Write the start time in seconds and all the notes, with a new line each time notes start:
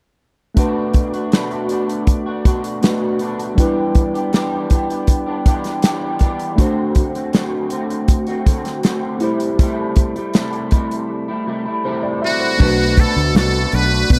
0.55 B2 A3 D4 F#4, kick, closed hi-hat
0.59 B4
0.94 kick, closed hi-hat
1.13 A3 D4 F#4, closed hi-hat
1.32 B2 A3 D4 F#4, snare, closed hi-hat
1.51 closed hi-hat
1.69 B2 A3 D4 F#4, closed hi-hat
1.89 closed hi-hat
2.07 kick, closed hi-hat
2.26 A3 D4 F#4
2.45 B2 A3 D4 F#4, kick, closed hi-hat
2.64 closed hi-hat
2.82 B2 A3 D4 F#4 B4, snare, closed hi-hat
3.19 B2 A3 D4 F#4, closed hi-hat
3.39 closed hi-hat
3.55 E3 G3 B3 D4 E4, kick, closed hi-hat
3.60 G4 B4
3.95 kick, closed hi-hat
4.14 B3 D4 G4, closed hi-hat
4.33 E3 B3 D4 G4, snare, closed hi-hat
4.70 E3 B3 D4 G4, kick, closed hi-hat
4.89 B3 D4 G4, closed hi-hat
5.07 kick, closed hi-hat
5.26 B3 D4 G4
5.46 E3 B3 D4 G4, kick, closed hi-hat
5.64 snare, closed hi-hat
5.82 E3 B3 D4 G4, snare, closed hi-hat
6.19 E3 B3 D4 G4, kick, closed hi-hat
6.40 closed hi-hat
6.56 D3 A3 C4 D4 F#4, kick, closed hi-hat
6.61 C5
6.95 kick, closed hi-hat
7.14 A3 C4 F#4, closed hi-hat
7.33 D3 A3 C4 F#4, snare, closed hi-hat
7.70 D3 A3 C4 F#4, closed hi-hat
7.90 closed hi-hat
8.08 kick, closed hi-hat
8.27 A3 C4 F#4, closed hi-hat
8.46 D3 A3 C4 F#4, kick, closed hi-hat
8.65 snare, closed hi-hat
8.83 D3 A3 C4 F#4, snare, closed hi-hat
9.19 C3 G3 A3 E4 G4, closed hi-hat
9.23 A3 E4 C5
9.40 closed hi-hat
9.59 C3 G3 A3 E4, kick, closed hi-hat
9.96 kick, closed hi-hat
10.15 G3 A3 E4, closed hi-hat
10.34 C3 G3 A3 E4, snare, closed hi-hat
10.53 closed hi-hat
10.71 C3 G3 A3 E4, kick, closed hi-hat
10.91 closed hi-hat
11.28 G3 A3 E4
11.46 C3 G3 A3 E4
11.65 G3 A3 E4
11.84 C3 G3 A3 E4 C5
12.03 D5
12.22 C3 G3 A3 E4 F#4 E5
12.40 C5
12.57 B1 B2 A3 D4 F#4, kick, crash
12.61 F#4 B4
12.97 B2 A3 D4 F#4 A4, kick, closed hi-hat
13.16 D2, closed hi-hat
13.34 C2 B2 A3 D4 F#4 A4, snare, closed hi-hat
13.72 B1 B2 A3 D4 F#4 B4, closed hi-hat
13.90 A3 D4 F#4
14.10 B2 B4, kick, closed hi-hat